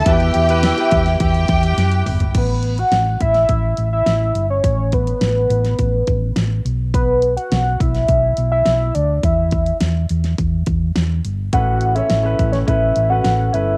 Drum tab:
CC |----------------|x---------------|----------------|----------------|
HH |xxxxxxxxxxxxxxox|x-xxx-xxx-x-x-x-|x-xxx-xxx-x-x-x-|x-xxx-xxx-x-x-x-|
SD |----o--o----o---|----o--o----o---|----o--o----o---|----o--o----o---|
T2 |--------------o-|----------------|----------------|----------------|
FT |---------------o|----------------|----------------|----------------|
BD |o-----o-o-o-----|o-----o-o-------|o-o-----o-o-----|o-----o-o-------|

CC |----------------|----------------|
HH |x-xxx-xxx-x-x-x-|x-xxx-xxx-x-x-x-|
SD |----o--o----o---|----o--o----o---|
T2 |----------------|----------------|
FT |----------------|----------------|
BD |o-o-----o-o-----|o-----o-o-------|